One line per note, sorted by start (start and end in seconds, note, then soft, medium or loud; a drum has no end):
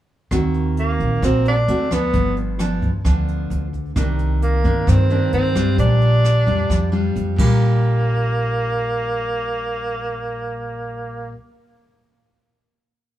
0.31 0.96 D#2 medium
0.31 1.20 D#3 soft
0.31 1.19 A#3 soft
0.31 1.19 C4 soft
0.31 1.20 F#4 medium
0.31 kick soft
0.31 cross-stick medium
0.31 closed hi-hat soft
0.54 closed hi-hat soft
0.77 1.21 A#3 medium
0.77 closed hi-hat soft
1.00 1.21 A#1 medium
1.00 kick soft
1.00 closed hi-hat soft
1.22 1.65 A#1 medium
1.22 1.66 A#2 soft
1.22 1.53 A#3 soft
1.22 1.54 C4 soft
1.22 1.45 C4 medium
1.22 1.54 F#4 soft
1.22 kick soft
1.22 cross-stick soft
1.22 closed hi-hat soft
1.45 1.95 D4 medium
1.45 closed hi-hat soft
1.68 2.11 D2 medium
1.68 1.87 A3 soft
1.68 1.88 C4 soft
1.68 1.88 F#4 soft
1.68 closed hi-hat soft
1.91 2.56 F3 soft
1.91 2.56 B3 soft
1.91 2.38 B3 medium
1.91 2.56 D4 medium
1.91 kick soft
1.91 cross-stick medium
1.91 closed hi-hat soft
2.13 2.78 G1 medium
2.13 3.02 G2 soft
2.13 kick soft
2.13 closed hi-hat soft
2.36 closed hi-hat soft
2.59 2.89 F3 soft
2.59 2.89 B3 soft
2.59 2.89 D4 soft
2.59 cross-stick soft
2.59 closed hi-hat soft
2.82 3.03 D2 medium
2.82 kick soft
2.82 closed hi-hat soft
3.04 3.47 D2 medium
3.04 3.94 D3 soft
3.04 3.66 F3 soft
3.04 3.66 B3 soft
3.04 3.67 D4 soft
3.04 kick soft
3.04 cross-stick soft
3.04 closed hi-hat soft
3.28 closed hi-hat soft
3.50 3.93 D2 medium
3.50 closed hi-hat soft
3.73 kick soft
3.73 closed hi-hat soft
3.96 4.60 C2 medium
3.96 4.85 C3 soft
3.96 4.61 D#3 soft
3.96 4.61 A#3 soft
3.96 4.61 D4 medium
3.96 kick medium
3.96 cross-stick soft
3.96 closed hi-hat soft
4.19 closed hi-hat soft
4.42 4.90 A#3 medium
4.42 closed hi-hat soft
4.64 4.86 G2 medium
4.64 5.06 D#3 soft
4.64 5.07 A#3 medium
4.64 5.07 D4 medium
4.64 kick soft
4.64 closed hi-hat soft
4.87 5.30 G2 medium
4.87 5.77 G2 soft
4.87 5.33 C4 medium
4.87 kick soft
4.87 cross-stick soft
4.87 closed hi-hat soft
5.10 5.52 D#3 soft
5.10 5.52 A#3 soft
5.10 5.52 D4 medium
5.10 closed hi-hat soft
5.32 5.75 G2 medium
5.32 5.75 C4 medium
5.32 closed hi-hat soft
5.55 6.43 G3 medium
5.55 6.43 D4 medium
5.55 6.44 F4 medium
5.55 kick soft
5.55 cross-stick medium
5.55 closed hi-hat soft
5.78 6.43 A#1 medium
5.78 6.67 A#2 soft
5.78 7.12 D4 medium
5.78 kick soft
5.78 closed hi-hat soft
6.01 closed hi-hat soft
6.24 cross-stick soft
6.24 closed hi-hat soft
6.46 6.68 F2 medium
6.46 6.89 G3 soft
6.46 6.89 D4 soft
6.46 6.89 F4 medium
6.46 kick soft
6.46 closed hi-hat soft
6.69 7.12 F2 medium
6.69 7.38 F3 soft
6.69 kick soft
6.69 cross-stick soft
6.69 closed hi-hat soft
6.92 7.37 G3 medium
6.92 7.38 D4 soft
6.92 7.39 F4 medium
6.92 closed hi-hat soft
7.16 7.37 F2 medium
7.16 closed hi-hat soft
7.36 11.32 A#1 medium
7.36 11.34 A#2 medium
7.36 11.36 G3 medium
7.36 11.33 A#3 medium
7.36 kick medium
7.36 crash soft
7.40 11.38 D4 medium
7.40 11.40 F4 medium